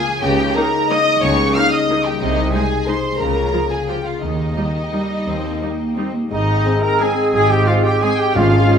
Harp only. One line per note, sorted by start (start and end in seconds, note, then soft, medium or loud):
0.00 0.23 C#3 medium
0.00 0.15 C#4 medium
0.00 0.25 F4 medium
0.00 0.47 A#4 medium
0.00 0.25 F5 medium
0.00 0.71 A#5 medium
0.09 0.30 A#3 medium
0.16 2.22 C#4 medium
0.24 1.21 C#3 medium
0.32 1.06 A#3 medium
0.39 0.55 D#4 medium
0.48 0.89 A#4 medium
0.56 0.97 D#4 medium
0.64 0.80 D#5 medium
0.73 1.71 A#5 medium
0.81 1.62 D#5 medium
0.90 1.45 A#4 medium
0.98 1.37 D#4 medium
1.07 1.30 A#3 medium
1.15 2.12 G3 medium
1.23 2.22 C#3 medium
1.31 2.04 A#3 medium
1.39 1.54 D#4 medium
1.46 1.87 A#4 medium
1.55 1.97 D#4 medium
1.64 1.79 D#5 medium
1.72 2.22 A#5 medium
1.89 2.22 A#4 medium
1.98 2.36 D#4 medium
2.06 2.22 A#3 medium
2.14 2.22 G3 medium
2.21 3.21 C3 medium
2.29 3.03 C4 medium
2.37 3.21 D#4 medium
2.45 2.95 G#4 medium
2.54 2.85 C5 medium
2.61 2.77 D#5 medium
2.70 3.21 G#5 medium
2.78 3.21 D#5 medium
2.87 3.21 C5 medium
2.96 3.21 G#4 medium
3.04 3.21 C4 medium
3.12 3.21 G#3 soft
3.20 4.22 C#3 medium
3.28 4.03 A#3 medium
3.36 3.52 F4 soft
3.44 3.86 A#4 medium
3.53 3.95 F4 medium
3.61 3.78 F5 medium
3.71 4.73 A#5 soft
3.79 4.23 F5 medium
3.87 4.46 A#4 soft
3.96 4.22 F4 soft
4.05 4.28 A#3 soft
4.13 4.22 C#4 soft
4.21 5.26 D#3 medium
4.29 5.09 A#3 soft
4.38 4.54 G4 soft
4.47 4.91 A#4 soft
4.56 5.00 G4 medium
4.65 4.82 G5 soft
4.74 5.78 A#5 medium
4.83 5.69 G5 soft
4.92 5.51 A#4 soft
5.01 5.43 G4 soft
5.10 5.34 A#3 soft
5.18 6.22 D#4 soft
5.27 6.33 D#3 soft
5.35 6.13 A#3 soft
5.44 5.60 G4 soft
5.52 5.96 A#4 soft
5.62 6.05 G4 soft
5.70 5.87 G5 soft
5.79 6.32 A#5 soft
5.88 6.32 G5 soft
5.97 6.33 A#4 soft
6.06 6.32 G4 soft
6.14 6.32 A#3 soft
6.23 8.38 D#4 soft
6.31 7.32 G#2 medium
6.48 7.48 G#3 medium
6.65 6.99 G#4 medium
6.82 7.16 C5 medium
7.17 7.83 C5 medium
7.33 8.34 G#2 medium
7.49 8.51 G#3 medium
7.66 8.01 G#4 medium
7.84 8.18 C5 medium
8.19 8.37 C5 medium
8.35 8.78 G#2 medium
8.52 8.78 G#3 medium
8.69 8.78 G#4 medium